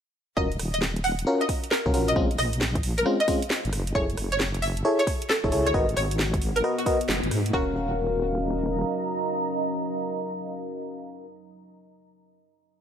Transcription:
0.37 0.57 D#1 loud
0.37 6.47 C#4 medium
0.37 0.49 C#4 medium
0.37 0.49 F4 medium
0.37 0.49 F#4 medium
0.37 0.49 A#4 medium
0.37 0.55 D#5 loud
0.37 kick loud
0.52 closed hi-hat soft
0.59 1.25 D#1 medium
0.59 2.16 F#4 medium
0.59 cross-stick medium
0.59 open hi-hat loud
0.72 2.79 D#5 medium
0.72 0.89 D#5 medium
0.72 closed hi-hat medium
0.82 snare loud
0.96 closed hi-hat soft
1.01 1.23 F#5 medium
1.01 3.73 A#5 medium
1.01 open hi-hat loud
1.19 closed hi-hat medium
1.27 1.44 C#4 medium
1.27 1.44 F4 medium
1.27 1.44 F#4 medium
1.27 1.44 A#4 loud
1.41 1.56 D#5 medium
1.41 closed hi-hat soft
1.49 kick loud
1.49 open hi-hat loud
1.64 closed hi-hat medium
1.71 1.90 A#4 medium
1.71 snare loud
1.86 1.95 C#2 loud
1.86 1.92 C#4 medium
1.86 1.92 F4 medium
1.86 1.92 F#4 medium
1.86 1.92 A#4 medium
1.86 kick loud
1.94 2.14 A#1 medium
1.94 2.14 C#4 medium
1.94 2.14 F4 medium
1.94 2.14 F#4 medium
1.94 2.14 A#4 medium
1.94 open hi-hat loud
2.08 2.23 D#5 medium
2.08 closed hi-hat medium
2.16 2.36 A#1 loud
2.16 2.28 G#3 medium
2.16 2.28 C4 medium
2.16 2.28 C#4 medium
2.16 2.28 F4 loud
2.16 kick loud
2.31 closed hi-hat soft
2.38 3.04 A#1 medium
2.38 2.57 D#5 medium
2.38 cross-stick medium
2.38 open hi-hat loud
2.53 closed hi-hat medium
2.61 snare loud
2.75 kick loud
2.75 closed hi-hat soft
2.83 open hi-hat loud
2.98 3.06 A#4 medium
2.98 closed hi-hat medium
3.06 3.18 G#3 medium
3.06 3.18 C4 medium
3.06 3.18 C#4 medium
3.06 3.18 F4 loud
3.06 cross-stick medium
3.20 3.89 D#5 medium
3.20 closed hi-hat soft
3.28 3.40 G#3 medium
3.28 3.40 C4 medium
3.28 3.40 C#4 medium
3.28 3.40 F4 loud
3.28 kick loud
3.28 open hi-hat loud
3.42 closed hi-hat medium
3.50 snare loud
3.65 3.74 G#1 loud
3.65 closed hi-hat soft
3.73 3.93 F#1 medium
3.73 cross-stick medium
3.73 open hi-hat loud
3.87 closed hi-hat medium
3.95 4.15 F#1 loud
3.95 4.07 E4 medium
3.95 4.07 G#4 medium
3.95 4.07 A4 medium
3.95 4.14 C#5 loud
3.95 4.07 C#5 medium
3.95 kick loud
4.10 5.74 A5 medium
4.10 closed hi-hat soft
4.16 4.83 F#1 medium
4.16 7.53 F#4 medium
4.16 cross-stick medium
4.16 open hi-hat loud
4.32 4.47 C#5 loud
4.32 5.74 E5 medium
4.32 closed hi-hat medium
4.40 snare loud
4.54 closed hi-hat soft
4.62 4.81 E5 medium
4.62 open hi-hat loud
4.77 closed hi-hat medium
4.85 5.02 E4 medium
4.85 5.02 G#4 medium
4.85 5.02 A4 medium
4.85 5.02 C#5 loud
4.99 5.14 C#5 loud
4.99 closed hi-hat soft
5.07 kick loud
5.07 open hi-hat loud
5.22 closed hi-hat medium
5.29 5.48 A4 medium
5.29 snare loud
5.44 5.53 E1 loud
5.44 5.51 E4 medium
5.44 5.51 G#4 medium
5.44 5.51 A4 medium
5.44 5.51 C#5 medium
5.44 kick loud
5.52 5.72 C#2 medium
5.52 5.72 E4 medium
5.52 5.72 G#4 medium
5.52 5.72 A4 medium
5.52 5.72 C#5 medium
5.52 open hi-hat loud
5.66 5.82 C#5 medium
5.66 closed hi-hat medium
5.74 5.94 G#1 loud
5.74 7.53 B3 medium
5.74 5.86 F#4 medium
5.74 5.86 A#4 medium
5.74 5.86 B4 medium
5.74 5.86 D#5 loud
5.74 kick loud
5.89 closed hi-hat soft
5.96 6.62 G#1 medium
5.96 6.15 C#5 medium
5.96 cross-stick medium
5.96 open hi-hat loud
6.11 closed hi-hat medium
6.19 snare loud
6.34 kick loud
6.34 closed hi-hat soft
6.42 open hi-hat loud
6.56 6.64 A#4 medium
6.56 closed hi-hat medium
6.64 6.76 F#4 medium
6.64 6.76 A#4 medium
6.64 6.76 B4 medium
6.64 6.76 D#5 loud
6.64 cross-stick medium
6.78 7.47 F#4 medium
6.78 closed hi-hat medium
6.86 6.98 F#4 loud
6.86 6.98 A#4 medium
6.86 6.98 B4 medium
6.86 6.98 D#5 loud
6.86 kick loud
6.86 open hi-hat loud
7.01 closed hi-hat medium
7.09 7.21 F#1 loud
7.09 snare loud
7.23 7.30 G#1 medium
7.23 closed hi-hat soft
7.31 7.51 G#2 medium
7.31 cross-stick soft
7.31 open hi-hat loud
7.46 closed hi-hat medium
7.53 8.84 D#1 loud
7.53 11.26 C#4 medium
7.53 11.26 F#4 medium
7.53 11.26 A#4 medium
7.53 11.26 F5 medium
7.53 kick loud
7.63 11.35 F#3 medium
7.69 11.42 D#5 medium
7.74 11.47 A#5 medium

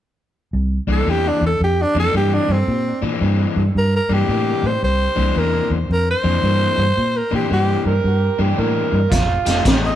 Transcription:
0.53 0.77 C2 medium
0.87 1.00 C2 medium
0.87 1.05 C3 medium
0.87 1.06 E3 medium
0.87 1.06 A#3 medium
0.87 1.07 D4 medium
0.92 1.11 A4 medium
1.07 1.30 E2 medium
1.07 1.47 C3 medium
1.07 1.47 E3 medium
1.07 1.48 A#3 medium
1.07 1.48 D4 medium
1.07 1.29 G4 medium
1.28 1.44 D4 medium
1.41 1.54 E2 medium
1.46 1.62 A4 medium
1.60 1.84 F2 medium
1.60 1.83 G4 medium
1.82 1.98 D4 medium
1.95 2.08 F2 medium
1.95 2.12 C3 medium
1.95 2.13 E3 medium
1.95 2.13 A#3 medium
1.95 2.14 D4 medium
2.00 2.15 A4 loud
2.14 2.38 G2 medium
2.14 2.54 C3 medium
2.14 2.54 E3 medium
2.14 2.54 A#3 medium
2.14 2.55 D4 medium
2.14 2.36 G4 medium
2.34 2.54 D4 medium
2.49 2.62 G2 medium
2.49 3.03 C4 medium
2.68 2.91 A#2 medium
3.02 3.15 A#2 medium
3.02 3.20 C3 medium
3.02 3.20 E3 medium
3.02 3.21 A#3 medium
3.02 3.21 D4 medium
3.21 3.45 G2 medium
3.21 3.62 C3 medium
3.21 3.62 E3 medium
3.21 3.62 A#3 medium
3.21 3.62 D4 medium
3.56 3.69 G2 medium
3.75 3.99 G2 medium
3.75 3.94 A#4 medium
3.96 4.15 A#4 medium
4.09 4.23 G2 medium
4.09 4.27 C3 medium
4.09 4.28 E3 medium
4.09 4.28 A#3 medium
4.09 4.28 D4 medium
4.13 4.68 G4 medium
4.28 4.52 A2 medium
4.28 4.69 C3 medium
4.28 4.69 E3 medium
4.28 4.69 A#3 medium
4.28 4.69 D4 medium
4.63 4.76 A2 medium
4.63 4.83 C5 medium
4.83 5.06 C2 medium
4.83 5.40 C5 medium
5.16 5.30 C2 medium
5.16 5.34 C3 medium
5.16 5.35 E3 medium
5.16 5.35 A#3 medium
5.16 5.35 D4 medium
5.36 5.60 E2 medium
5.36 5.76 C3 medium
5.36 5.76 E3 medium
5.36 5.77 A#3 medium
5.36 5.77 D4 medium
5.36 5.71 A#4 medium
5.70 5.83 E2 medium
5.90 6.13 F2 medium
5.90 6.08 A#4 medium
6.11 7.18 C5 medium
6.24 6.37 F2 medium
6.24 6.41 C3 medium
6.24 6.42 E3 medium
6.24 6.42 A#3 medium
6.24 6.42 D4 medium
6.42 6.67 G2 medium
6.42 6.83 C3 medium
6.42 6.84 E3 medium
6.42 6.84 A#3 medium
6.42 6.84 D4 medium
6.78 6.91 G2 medium
6.97 7.21 A#2 medium
7.17 7.33 A#4 medium
7.31 7.45 A#2 medium
7.31 7.49 C3 medium
7.31 7.50 E3 medium
7.31 7.50 A#3 medium
7.31 7.50 D4 medium
7.35 7.51 G4 medium
7.50 7.75 G2 medium
7.50 7.91 C3 medium
7.50 7.91 E3 medium
7.50 7.91 A#3 medium
7.50 7.92 D4 medium
7.50 7.86 G4 medium
7.85 7.98 G2 medium
7.85 8.43 A#4 medium
8.04 8.28 G2 medium
8.39 8.52 G2 medium
8.39 8.56 C3 medium
8.39 8.56 E3 medium
8.39 8.56 A#3 medium
8.39 8.57 D4 medium
8.39 8.61 G4 medium
8.57 8.82 A2 medium
8.57 8.98 C3 medium
8.57 8.98 E3 medium
8.57 8.98 A#3 medium
8.57 8.99 D4 medium
8.57 9.14 A#4 medium
8.93 9.06 G2 medium
9.12 9.35 F1 medium
9.12 9.64 F4 loud
9.12 kick medium
9.12 snare soft
9.12 closed hi-hat medium
9.46 9.60 F1 medium
9.46 9.63 F3 medium
9.46 9.63 A3 medium
9.46 9.64 D#4 medium
9.46 9.64 G4 medium
9.46 snare soft
9.46 closed hi-hat medium
9.64 9.89 A1 medium
9.64 9.95 F3 medium
9.64 9.95 A3 medium
9.64 9.95 D#4 medium
9.64 9.95 G4 medium
9.64 kick medium
9.64 snare loud
9.64 closed hi-hat medium
9.86 9.95 D#5 medium

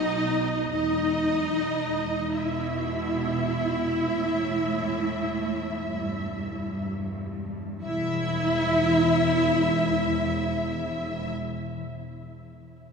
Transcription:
0.00 0.73 B1 medium
0.00 0.73 B2 medium
0.00 0.70 D#4 medium
0.00 0.71 D#5 medium
0.00 0.72 D#5 medium
0.71 7.47 E1 medium
0.71 2.17 E2 medium
0.71 2.32 D#4 medium
0.71 2.33 D#5 medium
2.35 4.05 B2 medium
2.35 6.87 E4 medium
2.35 6.87 E5 medium
2.35 6.88 E5 medium
4.09 5.87 A2 medium
5.91 7.81 G2 medium
7.83 11.32 E1 medium
7.83 11.32 E2 medium
7.83 11.31 E4 loud
7.83 11.31 E5 medium
7.83 11.32 E5 medium

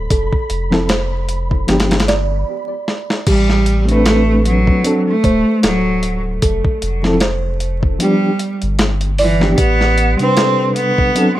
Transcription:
0.00 2.48 B5 medium
0.10 0.30 F1 medium
0.10 0.86 A4 medium
0.10 kick loud
0.10 closed hi-hat medium
0.33 kick medium
0.50 1.65 F1 medium
0.50 closed hi-hat medium
0.71 0.87 F3 medium
0.71 0.87 C4 medium
0.71 0.88 E4 medium
0.71 0.88 A4 loud
0.71 snare medium
0.89 1.69 C5 medium
0.89 snare loud
0.89 closed hi-hat medium
1.29 closed hi-hat medium
1.51 kick medium
1.67 2.44 G1 medium
1.67 1.97 F3 medium
1.67 1.97 B3 medium
1.67 1.98 D4 medium
1.67 1.99 G4 loud
1.67 snare medium
1.67 closed hi-hat medium
1.80 snare medium
1.80 closed hi-hat medium
1.91 snare medium
1.91 closed hi-hat medium
2.00 snare medium
2.00 closed hi-hat medium
2.08 2.46 D5 medium
2.08 snare loud
2.08 closed hi-hat medium
2.88 snare medium
3.10 snare medium
3.27 4.71 A1 loud
3.27 3.82 G3 loud
3.27 3.65 G4 medium
3.27 kick loud
3.27 closed hi-hat medium
3.27 crash loud
3.50 snare soft
3.66 closed hi-hat medium
3.85 4.81 A3 medium
3.85 4.82 C4 medium
3.85 closed hi-hat soft
3.90 4.41 A3 loud
3.90 4.83 D4 medium
3.90 4.84 B4 medium
4.06 4.85 A4 medium
4.06 snare loud
4.06 closed hi-hat medium
4.45 5.00 F#3 loud
4.45 closed hi-hat medium
4.67 kick medium
4.83 5.13 F#3 medium
4.83 5.13 C4 medium
4.83 5.14 D4 medium
4.83 5.15 A4 loud
4.83 closed hi-hat medium
5.08 5.59 A3 medium
5.24 5.43 D1 loud
5.24 5.60 C5 medium
5.24 kick medium
5.24 closed hi-hat medium
5.63 6.39 D1 medium
5.63 6.19 F#3 medium
5.63 6.01 A4 medium
5.63 snare loud
5.63 closed hi-hat medium
6.03 closed hi-hat medium
6.42 6.62 F1 loud
6.42 7.18 A4 medium
6.42 kick loud
6.42 closed hi-hat loud
6.65 kick medium
6.82 7.97 F1 medium
6.82 closed hi-hat medium
7.03 7.19 F3 medium
7.03 7.19 C4 medium
7.03 7.20 E4 medium
7.03 7.20 A4 loud
7.03 snare medium
7.20 8.00 C5 medium
7.20 snare loud
7.20 closed hi-hat medium
7.60 closed hi-hat medium
7.83 kick loud
7.99 8.29 F3 medium
7.99 8.55 G3 loud
7.99 8.29 B3 medium
7.99 8.30 D4 medium
7.99 8.30 G4 medium
7.99 closed hi-hat medium
8.39 closed hi-hat medium
8.62 9.55 G1 medium
8.62 closed hi-hat soft
8.79 snare loud
8.79 closed hi-hat medium
9.01 closed hi-hat soft
9.18 9.55 E3 medium
9.18 9.57 D5 medium
9.18 open hi-hat medium
9.40 9.56 F3 medium
9.40 9.56 B3 medium
9.40 9.57 D4 medium
9.40 9.57 G4 medium
9.40 snare soft
9.58 10.16 A1 medium
9.58 10.13 B3 loud
9.58 9.96 G4 medium
9.58 kick loud
9.58 closed hi-hat loud
9.81 snare soft
9.98 closed hi-hat medium
10.17 11.14 C3 medium
10.17 11.12 G3 medium
10.17 10.71 C4 loud
10.17 closed hi-hat soft
10.21 11.15 D4 medium
10.21 11.16 B4 loud
10.37 11.16 A4 medium
10.37 snare loud
10.37 closed hi-hat medium
10.76 11.31 B3 loud
10.76 closed hi-hat medium
10.98 kick medium
11.15 11.40 F#3 medium
11.15 11.40 C4 medium
11.15 11.40 D4 medium
11.15 11.40 A4 loud
11.15 closed hi-hat medium

